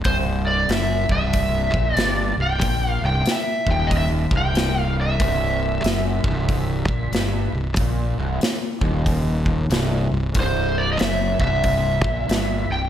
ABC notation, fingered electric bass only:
X:1
M:4/4
L:1/8
Q:"Swing" 1/4=93
K:Cmix
V:1 name="Fingered electric bass" clef=bass
C,,,2 ^F,,, C,,,2 B,,, G,,, C,,, | B,,, C,,, z _E,,,2 C,,,3 | C,,,2 ^F,,, C,,,2 B,,, G,,, C,,, | B,,, C,,, z _E,,,3 C,,, C,,, |
C,,,2 ^F,,, C,,,2 B,,, G,,, C,,, |]